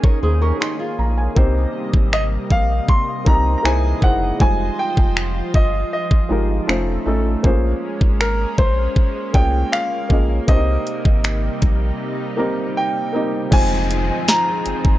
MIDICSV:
0, 0, Header, 1, 8, 480
1, 0, Start_track
1, 0, Key_signature, -4, "minor"
1, 0, Tempo, 759494
1, 863, Time_signature, 4, 2, 24, 8
1, 9471, End_track
2, 0, Start_track
2, 0, Title_t, "Grand piano"
2, 0, Program_c, 0, 0
2, 1348, Note_on_c, 0, 75, 94
2, 1402, Note_off_c, 0, 75, 0
2, 1591, Note_on_c, 0, 77, 92
2, 1829, Note_on_c, 0, 84, 94
2, 1834, Note_off_c, 0, 77, 0
2, 2049, Note_off_c, 0, 84, 0
2, 2071, Note_on_c, 0, 82, 93
2, 2253, Note_off_c, 0, 82, 0
2, 2262, Note_on_c, 0, 82, 70
2, 2305, Note_off_c, 0, 82, 0
2, 2310, Note_on_c, 0, 80, 93
2, 2530, Note_off_c, 0, 80, 0
2, 2551, Note_on_c, 0, 78, 87
2, 2790, Note_on_c, 0, 80, 96
2, 2794, Note_off_c, 0, 78, 0
2, 3029, Note_on_c, 0, 79, 91
2, 3034, Note_off_c, 0, 80, 0
2, 3509, Note_on_c, 0, 75, 84
2, 3520, Note_off_c, 0, 79, 0
2, 3730, Note_off_c, 0, 75, 0
2, 3749, Note_on_c, 0, 75, 76
2, 4441, Note_off_c, 0, 75, 0
2, 5188, Note_on_c, 0, 70, 86
2, 5426, Note_on_c, 0, 72, 89
2, 5433, Note_off_c, 0, 70, 0
2, 5907, Note_on_c, 0, 79, 106
2, 5919, Note_off_c, 0, 72, 0
2, 6145, Note_on_c, 0, 77, 96
2, 6152, Note_off_c, 0, 79, 0
2, 6599, Note_off_c, 0, 77, 0
2, 6626, Note_on_c, 0, 75, 90
2, 8040, Note_off_c, 0, 75, 0
2, 8072, Note_on_c, 0, 79, 89
2, 8553, Note_on_c, 0, 80, 108
2, 8562, Note_off_c, 0, 79, 0
2, 9031, Note_on_c, 0, 82, 110
2, 9043, Note_off_c, 0, 80, 0
2, 9471, Note_off_c, 0, 82, 0
2, 9471, End_track
3, 0, Start_track
3, 0, Title_t, "Nylon-string guitar"
3, 0, Program_c, 1, 24
3, 24, Note_on_c, 1, 73, 74
3, 27, Note_on_c, 1, 70, 59
3, 138, Note_off_c, 1, 73, 0
3, 139, Note_off_c, 1, 70, 0
3, 143, Note_on_c, 1, 72, 78
3, 146, Note_on_c, 1, 68, 69
3, 257, Note_off_c, 1, 72, 0
3, 259, Note_off_c, 1, 68, 0
3, 262, Note_on_c, 1, 70, 77
3, 266, Note_on_c, 1, 67, 70
3, 374, Note_off_c, 1, 67, 0
3, 377, Note_off_c, 1, 70, 0
3, 381, Note_on_c, 1, 67, 77
3, 385, Note_on_c, 1, 63, 68
3, 496, Note_off_c, 1, 67, 0
3, 498, Note_off_c, 1, 63, 0
3, 501, Note_on_c, 1, 68, 75
3, 504, Note_on_c, 1, 65, 61
3, 844, Note_off_c, 1, 68, 0
3, 846, Note_off_c, 1, 65, 0
3, 9471, End_track
4, 0, Start_track
4, 0, Title_t, "Felt piano"
4, 0, Program_c, 2, 0
4, 0, Control_c, 2, 64, 127
4, 0, Note_on_c, 2, 58, 72
4, 0, Note_on_c, 2, 61, 67
4, 0, Note_on_c, 2, 63, 66
4, 0, Note_on_c, 2, 68, 64
4, 0, Note_on_c, 2, 73, 77
4, 147, Note_on_c, 2, 87, 60
4, 259, Note_off_c, 2, 87, 0
4, 266, Note_on_c, 2, 85, 68
4, 379, Note_off_c, 2, 85, 0
4, 385, Note_on_c, 2, 84, 66
4, 612, Note_off_c, 2, 84, 0
4, 625, Note_on_c, 2, 82, 64
4, 738, Note_off_c, 2, 82, 0
4, 744, Note_on_c, 2, 80, 59
4, 855, Note_off_c, 2, 58, 0
4, 855, Note_on_c, 2, 58, 81
4, 860, Note_on_c, 2, 60, 76
4, 865, Note_off_c, 2, 63, 0
4, 865, Note_on_c, 2, 63, 76
4, 869, Note_on_c, 2, 67, 76
4, 871, Control_c, 2, 64, 0
4, 873, Note_on_c, 2, 72, 87
4, 875, Note_off_c, 2, 68, 0
4, 877, Note_off_c, 2, 61, 0
4, 877, Note_off_c, 2, 73, 0
4, 972, Note_off_c, 2, 80, 0
4, 979, Control_c, 2, 64, 127
4, 1725, Note_off_c, 2, 58, 0
4, 1728, Note_off_c, 2, 60, 0
4, 1730, Note_off_c, 2, 63, 0
4, 1732, Note_off_c, 2, 67, 0
4, 1734, Note_off_c, 2, 72, 0
4, 2053, Note_on_c, 2, 58, 68
4, 2056, Note_on_c, 2, 60, 61
4, 2062, Note_on_c, 2, 63, 63
4, 2065, Note_on_c, 2, 67, 60
4, 2070, Note_on_c, 2, 75, 79
4, 2284, Note_off_c, 2, 58, 0
4, 2289, Note_off_c, 2, 63, 0
4, 2293, Note_on_c, 2, 58, 77
4, 2299, Note_on_c, 2, 63, 72
4, 2300, Note_off_c, 2, 60, 0
4, 2302, Note_on_c, 2, 64, 71
4, 2304, Note_off_c, 2, 67, 0
4, 2307, Note_off_c, 2, 75, 0
4, 2307, Note_on_c, 2, 68, 69
4, 2311, Note_on_c, 2, 72, 86
4, 2312, Control_c, 2, 64, 0
4, 2424, Control_c, 2, 64, 127
4, 2515, Note_off_c, 2, 58, 0
4, 2517, Note_off_c, 2, 63, 0
4, 2519, Note_off_c, 2, 64, 0
4, 2521, Note_off_c, 2, 68, 0
4, 2524, Note_off_c, 2, 72, 0
4, 2533, Note_on_c, 2, 58, 68
4, 2538, Note_on_c, 2, 63, 57
4, 2541, Note_on_c, 2, 64, 60
4, 2546, Note_on_c, 2, 68, 59
4, 2550, Note_on_c, 2, 72, 71
4, 2755, Note_off_c, 2, 58, 0
4, 2757, Note_off_c, 2, 63, 0
4, 2759, Note_off_c, 2, 64, 0
4, 2761, Note_off_c, 2, 68, 0
4, 2763, Note_off_c, 2, 72, 0
4, 2773, Note_on_c, 2, 56, 71
4, 2778, Note_on_c, 2, 63, 65
4, 2783, Note_on_c, 2, 65, 67
4, 2787, Note_on_c, 2, 55, 65
4, 2791, Note_on_c, 2, 72, 74
4, 2792, Control_c, 2, 64, 0
4, 2913, Control_c, 2, 64, 127
4, 3644, Note_off_c, 2, 56, 0
4, 3646, Note_off_c, 2, 63, 0
4, 3649, Note_off_c, 2, 65, 0
4, 3651, Note_off_c, 2, 55, 0
4, 3653, Note_off_c, 2, 72, 0
4, 3975, Note_on_c, 2, 56, 69
4, 3979, Note_on_c, 2, 63, 63
4, 3984, Note_on_c, 2, 65, 65
4, 3988, Note_on_c, 2, 67, 65
4, 3992, Note_on_c, 2, 70, 81
4, 4215, Note_off_c, 2, 63, 0
4, 4216, Note_on_c, 2, 57, 80
4, 4219, Note_off_c, 2, 56, 0
4, 4219, Note_off_c, 2, 65, 0
4, 4219, Note_on_c, 2, 61, 69
4, 4224, Note_on_c, 2, 63, 71
4, 4226, Note_off_c, 2, 67, 0
4, 4228, Note_off_c, 2, 70, 0
4, 4228, Note_on_c, 2, 65, 75
4, 4232, Control_c, 2, 64, 0
4, 4233, Note_on_c, 2, 72, 84
4, 4348, Control_c, 2, 64, 127
4, 4436, Note_off_c, 2, 57, 0
4, 4438, Note_off_c, 2, 61, 0
4, 4440, Note_off_c, 2, 63, 0
4, 4442, Note_off_c, 2, 65, 0
4, 4445, Note_off_c, 2, 72, 0
4, 4457, Note_on_c, 2, 57, 78
4, 4461, Note_on_c, 2, 61, 71
4, 4465, Note_on_c, 2, 63, 72
4, 4469, Note_on_c, 2, 65, 68
4, 4474, Note_on_c, 2, 69, 84
4, 4676, Note_off_c, 2, 57, 0
4, 4679, Note_off_c, 2, 61, 0
4, 4681, Note_off_c, 2, 63, 0
4, 4683, Note_off_c, 2, 65, 0
4, 4685, Note_off_c, 2, 69, 0
4, 4695, Note_on_c, 2, 58, 88
4, 4699, Note_on_c, 2, 61, 77
4, 4705, Note_on_c, 2, 65, 77
4, 4708, Note_on_c, 2, 68, 76
4, 4712, Control_c, 2, 64, 0
4, 4713, Note_on_c, 2, 72, 91
4, 4828, Control_c, 2, 64, 127
4, 5565, Note_off_c, 2, 58, 0
4, 5567, Note_off_c, 2, 61, 0
4, 5570, Note_off_c, 2, 65, 0
4, 5572, Note_off_c, 2, 68, 0
4, 5574, Note_off_c, 2, 72, 0
4, 5898, Note_on_c, 2, 58, 70
4, 5901, Note_on_c, 2, 61, 63
4, 5907, Note_on_c, 2, 65, 64
4, 5910, Note_on_c, 2, 68, 67
4, 5915, Note_on_c, 2, 73, 79
4, 6333, Note_off_c, 2, 58, 0
4, 6335, Note_off_c, 2, 61, 0
4, 6338, Note_off_c, 2, 65, 0
4, 6340, Note_off_c, 2, 68, 0
4, 6342, Note_off_c, 2, 73, 0
4, 6375, Note_on_c, 2, 58, 63
4, 6380, Note_on_c, 2, 61, 59
4, 6385, Note_on_c, 2, 65, 60
4, 6389, Note_on_c, 2, 68, 57
4, 6393, Note_on_c, 2, 75, 71
4, 6596, Note_off_c, 2, 58, 0
4, 6598, Note_off_c, 2, 61, 0
4, 6600, Note_off_c, 2, 65, 0
4, 6603, Note_off_c, 2, 68, 0
4, 6605, Note_off_c, 2, 75, 0
4, 6617, Note_on_c, 2, 58, 70
4, 6621, Note_on_c, 2, 60, 65
4, 6627, Note_on_c, 2, 62, 54
4, 6631, Note_on_c, 2, 67, 67
4, 6632, Control_c, 2, 64, 0
4, 6635, Note_on_c, 2, 72, 79
4, 6666, Note_off_c, 2, 62, 0
4, 6668, Note_on_c, 2, 63, 65
4, 6761, Control_c, 2, 64, 127
4, 7486, Note_off_c, 2, 58, 0
4, 7488, Note_off_c, 2, 60, 0
4, 7493, Note_off_c, 2, 67, 0
4, 7495, Note_off_c, 2, 72, 0
4, 7511, Note_off_c, 2, 63, 0
4, 7815, Note_on_c, 2, 58, 85
4, 7820, Note_on_c, 2, 60, 78
4, 7824, Note_on_c, 2, 63, 74
4, 7828, Note_on_c, 2, 67, 78
4, 7833, Note_on_c, 2, 70, 93
4, 8252, Note_off_c, 2, 58, 0
4, 8254, Note_off_c, 2, 60, 0
4, 8256, Note_off_c, 2, 63, 0
4, 8259, Note_off_c, 2, 67, 0
4, 8261, Note_off_c, 2, 70, 0
4, 8297, Note_on_c, 2, 58, 81
4, 8302, Note_on_c, 2, 60, 66
4, 8306, Note_on_c, 2, 63, 69
4, 8310, Note_on_c, 2, 67, 69
4, 8315, Note_on_c, 2, 75, 84
4, 8517, Note_off_c, 2, 58, 0
4, 8519, Note_off_c, 2, 60, 0
4, 8521, Note_off_c, 2, 63, 0
4, 8523, Note_off_c, 2, 67, 0
4, 8526, Note_off_c, 2, 75, 0
4, 8538, Note_on_c, 2, 56, 77
4, 8543, Note_on_c, 2, 60, 68
4, 8547, Note_on_c, 2, 63, 72
4, 8550, Control_c, 2, 64, 0
4, 8551, Note_on_c, 2, 65, 65
4, 8555, Note_on_c, 2, 72, 85
4, 8652, Control_c, 2, 64, 127
4, 9407, Note_off_c, 2, 56, 0
4, 9409, Note_off_c, 2, 60, 0
4, 9411, Note_off_c, 2, 63, 0
4, 9413, Note_off_c, 2, 65, 0
4, 9415, Note_off_c, 2, 72, 0
4, 9471, End_track
5, 0, Start_track
5, 0, Title_t, "Analog synth pad"
5, 0, Program_c, 3, 89
5, 0, Note_on_c, 3, 51, 80
5, 0, Note_on_c, 3, 58, 73
5, 0, Note_on_c, 3, 61, 86
5, 0, Note_on_c, 3, 68, 87
5, 836, Note_off_c, 3, 58, 0
5, 837, Note_off_c, 3, 61, 0
5, 843, Note_off_c, 3, 51, 0
5, 843, Note_off_c, 3, 68, 0
5, 859, Note_on_c, 3, 48, 78
5, 860, Note_on_c, 3, 58, 74
5, 861, Note_on_c, 3, 55, 76
5, 861, Note_on_c, 3, 75, 85
5, 2288, Note_off_c, 3, 55, 0
5, 2301, Note_on_c, 3, 52, 85
5, 2301, Note_on_c, 3, 56, 74
5, 2762, Note_off_c, 3, 48, 0
5, 2763, Note_off_c, 3, 58, 0
5, 2777, Note_off_c, 3, 52, 0
5, 2777, Note_on_c, 3, 53, 80
5, 2777, Note_on_c, 3, 72, 88
5, 2778, Note_off_c, 3, 56, 0
5, 2778, Note_on_c, 3, 65, 74
5, 4206, Note_off_c, 3, 65, 0
5, 4206, Note_off_c, 3, 72, 0
5, 4220, Note_on_c, 3, 57, 69
5, 4677, Note_off_c, 3, 75, 0
5, 4681, Note_off_c, 3, 53, 0
5, 4697, Note_off_c, 3, 57, 0
5, 4697, Note_on_c, 3, 61, 86
5, 4698, Note_on_c, 3, 58, 74
5, 4699, Note_on_c, 3, 56, 82
5, 6601, Note_off_c, 3, 61, 0
5, 6602, Note_off_c, 3, 56, 0
5, 6621, Note_on_c, 3, 48, 77
5, 6621, Note_on_c, 3, 55, 75
5, 6621, Note_on_c, 3, 63, 87
5, 8516, Note_off_c, 3, 58, 0
5, 8523, Note_off_c, 3, 48, 0
5, 8523, Note_off_c, 3, 55, 0
5, 8523, Note_off_c, 3, 63, 0
5, 8544, Note_on_c, 3, 60, 78
5, 8545, Note_on_c, 3, 53, 81
5, 8545, Note_on_c, 3, 63, 77
5, 8545, Note_on_c, 3, 68, 98
5, 9471, Note_off_c, 3, 53, 0
5, 9471, Note_off_c, 3, 60, 0
5, 9471, Note_off_c, 3, 63, 0
5, 9471, Note_off_c, 3, 68, 0
5, 9471, End_track
6, 0, Start_track
6, 0, Title_t, "Analog synth bass"
6, 0, Program_c, 4, 38
6, 144, Note_on_c, 4, 39, 95
6, 330, Note_off_c, 4, 39, 0
6, 624, Note_on_c, 4, 34, 94
6, 810, Note_off_c, 4, 34, 0
6, 863, Note_on_c, 4, 36, 96
6, 1049, Note_off_c, 4, 36, 0
6, 1223, Note_on_c, 4, 32, 85
6, 1503, Note_off_c, 4, 32, 0
6, 1584, Note_on_c, 4, 34, 90
6, 1770, Note_off_c, 4, 34, 0
6, 2064, Note_on_c, 4, 36, 92
6, 2250, Note_off_c, 4, 36, 0
6, 2303, Note_on_c, 4, 36, 99
6, 2490, Note_off_c, 4, 36, 0
6, 2542, Note_on_c, 4, 30, 91
6, 2729, Note_off_c, 4, 30, 0
6, 2783, Note_on_c, 4, 29, 102
6, 2970, Note_off_c, 4, 29, 0
6, 3143, Note_on_c, 4, 29, 86
6, 3423, Note_off_c, 4, 29, 0
6, 3503, Note_on_c, 4, 31, 87
6, 3690, Note_off_c, 4, 31, 0
6, 3983, Note_on_c, 4, 32, 96
6, 4169, Note_off_c, 4, 32, 0
6, 4224, Note_on_c, 4, 29, 104
6, 4410, Note_off_c, 4, 29, 0
6, 4463, Note_on_c, 4, 33, 86
6, 4650, Note_off_c, 4, 33, 0
6, 4703, Note_on_c, 4, 34, 105
6, 4889, Note_off_c, 4, 34, 0
6, 5063, Note_on_c, 4, 32, 90
6, 5343, Note_off_c, 4, 32, 0
6, 5424, Note_on_c, 4, 34, 84
6, 5610, Note_off_c, 4, 34, 0
6, 5904, Note_on_c, 4, 36, 88
6, 6090, Note_off_c, 4, 36, 0
6, 6383, Note_on_c, 4, 34, 93
6, 6569, Note_off_c, 4, 34, 0
6, 6624, Note_on_c, 4, 36, 105
6, 6810, Note_off_c, 4, 36, 0
6, 6985, Note_on_c, 4, 32, 89
6, 7264, Note_off_c, 4, 32, 0
6, 7345, Note_on_c, 4, 34, 88
6, 7531, Note_off_c, 4, 34, 0
6, 8543, Note_on_c, 4, 29, 103
6, 8916, Note_off_c, 4, 29, 0
6, 9264, Note_on_c, 4, 32, 51
6, 9312, Note_off_c, 4, 32, 0
6, 9383, Note_on_c, 4, 32, 84
6, 9471, Note_off_c, 4, 32, 0
6, 9471, End_track
7, 0, Start_track
7, 0, Title_t, "Downlifter"
7, 0, Program_c, 5, 103
7, 8544, Note_on_c, 5, 60, 78
7, 9471, Note_off_c, 5, 60, 0
7, 9471, End_track
8, 0, Start_track
8, 0, Title_t, "Drums"
8, 22, Note_on_c, 9, 36, 101
8, 86, Note_off_c, 9, 36, 0
8, 391, Note_on_c, 9, 26, 106
8, 454, Note_off_c, 9, 26, 0
8, 863, Note_on_c, 9, 36, 96
8, 926, Note_off_c, 9, 36, 0
8, 1223, Note_on_c, 9, 36, 82
8, 1286, Note_off_c, 9, 36, 0
8, 1346, Note_on_c, 9, 26, 100
8, 1409, Note_off_c, 9, 26, 0
8, 1583, Note_on_c, 9, 36, 89
8, 1647, Note_off_c, 9, 36, 0
8, 1824, Note_on_c, 9, 36, 90
8, 1887, Note_off_c, 9, 36, 0
8, 2063, Note_on_c, 9, 36, 99
8, 2127, Note_off_c, 9, 36, 0
8, 2310, Note_on_c, 9, 26, 111
8, 2373, Note_off_c, 9, 26, 0
8, 2542, Note_on_c, 9, 36, 90
8, 2605, Note_off_c, 9, 36, 0
8, 2782, Note_on_c, 9, 36, 100
8, 2846, Note_off_c, 9, 36, 0
8, 3142, Note_on_c, 9, 36, 86
8, 3206, Note_off_c, 9, 36, 0
8, 3266, Note_on_c, 9, 26, 106
8, 3329, Note_off_c, 9, 26, 0
8, 3503, Note_on_c, 9, 36, 94
8, 3566, Note_off_c, 9, 36, 0
8, 3862, Note_on_c, 9, 36, 96
8, 3925, Note_off_c, 9, 36, 0
8, 4230, Note_on_c, 9, 26, 105
8, 4293, Note_off_c, 9, 26, 0
8, 4703, Note_on_c, 9, 36, 93
8, 4766, Note_off_c, 9, 36, 0
8, 5063, Note_on_c, 9, 36, 82
8, 5126, Note_off_c, 9, 36, 0
8, 5187, Note_on_c, 9, 26, 100
8, 5250, Note_off_c, 9, 26, 0
8, 5424, Note_on_c, 9, 36, 97
8, 5487, Note_off_c, 9, 36, 0
8, 5664, Note_on_c, 9, 36, 85
8, 5727, Note_off_c, 9, 36, 0
8, 5904, Note_on_c, 9, 36, 102
8, 5968, Note_off_c, 9, 36, 0
8, 6150, Note_on_c, 9, 26, 110
8, 6214, Note_off_c, 9, 26, 0
8, 6383, Note_on_c, 9, 36, 87
8, 6446, Note_off_c, 9, 36, 0
8, 6624, Note_on_c, 9, 36, 100
8, 6624, Note_on_c, 9, 42, 67
8, 6687, Note_off_c, 9, 36, 0
8, 6688, Note_off_c, 9, 42, 0
8, 6868, Note_on_c, 9, 42, 66
8, 6931, Note_off_c, 9, 42, 0
8, 6984, Note_on_c, 9, 36, 92
8, 7048, Note_off_c, 9, 36, 0
8, 7105, Note_on_c, 9, 42, 74
8, 7108, Note_on_c, 9, 26, 107
8, 7168, Note_off_c, 9, 42, 0
8, 7171, Note_off_c, 9, 26, 0
8, 7343, Note_on_c, 9, 42, 64
8, 7345, Note_on_c, 9, 36, 89
8, 7407, Note_off_c, 9, 42, 0
8, 7409, Note_off_c, 9, 36, 0
8, 8544, Note_on_c, 9, 36, 108
8, 8545, Note_on_c, 9, 49, 99
8, 8546, Note_on_c, 9, 42, 72
8, 8607, Note_off_c, 9, 36, 0
8, 8608, Note_off_c, 9, 49, 0
8, 8609, Note_off_c, 9, 42, 0
8, 8789, Note_on_c, 9, 42, 75
8, 8852, Note_off_c, 9, 42, 0
8, 9025, Note_on_c, 9, 42, 76
8, 9028, Note_on_c, 9, 38, 112
8, 9088, Note_off_c, 9, 42, 0
8, 9091, Note_off_c, 9, 38, 0
8, 9262, Note_on_c, 9, 42, 62
8, 9326, Note_off_c, 9, 42, 0
8, 9383, Note_on_c, 9, 36, 77
8, 9447, Note_off_c, 9, 36, 0
8, 9471, End_track
0, 0, End_of_file